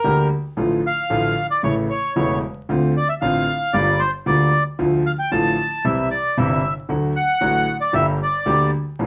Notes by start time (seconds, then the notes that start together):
Already playing: A#4
0.04 D2 D3 G3 A#3 G4
0.57 A1 A2 D3 F3 A3 F4
0.86 F5
1.10 A1 A2 D3 F3 A3 F4
1.50 D5
1.63 A1 A2 C#3 E3 A3 E4 C#5
1.90 C#5
2.16 E1 E2 C#3 E3 A3 E4
2.69 D2 D3 A3 C4 F4
2.97 D5
3.09 E5
3.21 A1 A2 D3 A3 C4 F4 F5
3.73 G1 G2 D3 G3 A#3 F4 D5
3.99 C5
4.26 D2 D3 G3 A#3 F4 D5
4.79 D2 D3 F3 A3 F4
5.06 F5
5.19 G5
5.31 A1 A2 D3 F3 A3 F4 A5
5.85 C2 C3 E3 G3 E4 E5
6.11 D5
6.37 G1 G2 C3 E3 G3 E4 E5
6.89 D2 D3 F#3 A3 F#4
7.16 F#5
7.41 A1 A2 D3 F#3 A3 F#4
7.81 D5
7.93 G1 G2 D3 G3 A#3 G4 E5
8.23 D5
8.46 D2 D3 G3 A#3 G4
8.99 A1 A2 D3 F3 A3 F4